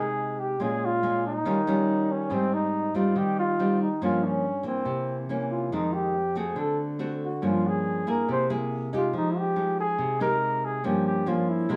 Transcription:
Already playing: nylon-string guitar C3 G#3 D#4
0.00 flugelhorn G#4
0.39 flugelhorn G4
0.60 nylon-string guitar A#2 G#3 C#4 F4, flugelhorn G#4
0.85 flugelhorn F4
1.03 nylon-string guitar G#3 C#4 F4
1.27 flugelhorn D#4
1.45 nylon-string guitar D#3 G3 C#4 F4
1.67 nylon-string guitar G3 C#4 F4
2.12 flugelhorn C#4
2.30 nylon-string guitar G#2 G3 C4 D#4, flugelhorn C4
2.54 flugelhorn D#4
2.94 nylon-string guitar G3 C4 D#4, flugelhorn F4
3.15 nylon-string guitar D#3, flugelhorn G4
3.39 flugelhorn F4
3.59 nylon-string guitar G3 C4 D#4
3.82 flugelhorn D#4
4.02 nylon-string guitar G2 F3 A#3 C#4, flugelhorn F4
4.24 flugelhorn C#4
4.63 nylon-string guitar E3 A#3, flugelhorn C4
4.85 nylon-string guitar C3
5.29 nylon-string guitar E3 A#3 C#4
5.51 flugelhorn F4
5.72 nylon-string guitar F2 D#3 G#3 C4, flugelhorn D#4
5.93 flugelhorn G4
6.35 nylon-string guitar A3 C4 F#4, flugelhorn G#4
6.56 nylon-string guitar D3, flugelhorn A4
6.99 nylon-string guitar A3 C4 F#4
7.24 flugelhorn F#4
7.42 nylon-string guitar G2 F3 A#3 C#4
7.46 flugelhorn F4
7.67 flugelhorn G#4
8.07 nylon-string guitar A#3 E4 G#4, flugelhorn A#4
8.29 nylon-string guitar C3, flugelhorn C5
8.50 nylon-string guitar A#3 E4 G#4
8.93 nylon-string guitar G#3 D#4 G4, flugelhorn F4
9.13 nylon-string guitar F3, flugelhorn D#4
9.38 flugelhorn G4
9.56 nylon-string guitar G#3 D#4
9.80 flugelhorn G#4
9.98 nylon-string guitar C3
10.20 nylon-string guitar G#3 D#4 G4, flugelhorn A#4
10.65 flugelhorn G#4
10.84 nylon-string guitar G2 F3 A#3 C#4, flugelhorn G4
11.07 flugelhorn G4
11.26 nylon-string guitar F3 A#3 C#4, flugelhorn F4
11.49 flugelhorn E4
11.69 nylon-string guitar C3 G#3 A#3 E4

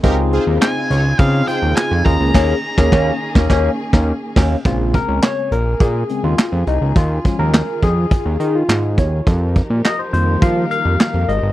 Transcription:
0.03 analog synth bass C#2, string section C#3 C4 D#4 F4, tine electric piano C4 D#4 F4 G#4, analog polysynth D#4 G4 A#4, kick, closed hi-hat
0.32 analog polysynth F4 G#4 C5, closed hi-hat
0.47 analog synth bass D#2
0.61 lead electric guitar G#5, snare, clap, closed hi-hat
0.90 analog synth bass C#2, analog polysynth F4 G#4 C#5, closed hi-hat
1.19 analog synth bass C#3, tine electric piano C4 D#4 F4 G#4, lead electric guitar F5, kick, closed hi-hat
1.47 analog polysynth F4 G#4 C5, lead electric guitar G5, closed hi-hat
1.62 analog synth bass D#2
1.76 lead electric guitar G#5, snare, clap, closed hi-hat
1.91 analog synth bass F2
2.05 analog synth bass D#2, string section D#3 A#3 C#4 G#4, tine electric piano A#3 C#4 F4 G#4, lead electric guitar A#5, kick, open hi-hat
2.20 analog synth bass C#2
2.34 analog synth bass D#2, tine electric piano A#3 C#4 G#4, kick, snare, crash
2.77 analog synth bass D#2, tine electric piano A#3 C#4 G#4, kick, snare
2.92 analog synth bass D#2, tine electric piano A#3 C#4, kick, snare
3.35 analog synth bass D#2, tine electric piano A#3 C#4, kick, snare
3.50 analog synth bass D#2, tine electric piano A#3 C#4, kick, snare
3.93 analog synth bass D#2, tine electric piano A#3 C#4, kick, snare
4.36 analog synth bass D#2, tine electric piano A#3 C#4, kick, snare, crash
4.65 analog synth bass A#1, tine electric piano C#3 G#3 C4 F4, string section C#3 A#3 G#4, kick, closed hi-hat
4.94 tine electric piano A#4, kick, closed hi-hat
5.08 analog synth bass C#2
5.22 tine electric piano C#5, snare, clap, closed hi-hat
5.51 analog synth bass A#1, tine electric piano A#4, closed hi-hat
5.80 analog synth bass A#2, tine electric piano G#4, kick, closed hi-hat
6.09 tine electric piano C#3 G#3 C4, closed hi-hat
6.24 analog synth bass D#2, tine electric piano F4
6.38 snare, clap, closed hi-hat
6.52 analog synth bass F2
6.67 analog synth bass C2, tine electric piano D#4, closed hi-hat
6.81 analog synth bass C#2
6.96 analog synth bass D#2, string section D#3 F4, tine electric piano F4, kick, closed hi-hat
7.24 tine electric piano F3 G#3 C#4, kick, closed hi-hat
7.39 analog synth bass D#2, tine electric piano A#4
7.53 snare, clap, closed hi-hat
7.83 analog synth bass F2, tine electric piano G#4, kick, closed hi-hat
8.11 kick, closed hi-hat
8.26 analog synth bass D#2
8.40 analog synth bass D#3, closed hi-hat
8.55 tine electric piano F4
8.69 analog synth bass G#2, snare, clap, closed hi-hat
8.98 analog synth bass D#2, tine electric piano C#5, kick, closed hi-hat
9.26 analog synth bass F2, string section F3 D#4 G4 A#4, kick, closed hi-hat
9.56 kick, closed hi-hat
9.70 analog synth bass A#2
9.84 tine electric piano D#5, snare, clap, closed hi-hat
9.99 tine electric piano C5
10.13 analog synth bass F2, tine electric piano D#3 G3 A#3 C5, closed hi-hat
10.42 analog synth bass F3, tine electric piano F5, kick, closed hi-hat
10.71 tine electric piano F5, closed hi-hat
10.85 analog synth bass F2
11.00 snare, clap, closed hi-hat
11.14 analog synth bass F2
11.28 analog synth bass G#1, string section G3 C5, tine electric piano D#5, closed hi-hat
11.43 analog synth bass G1

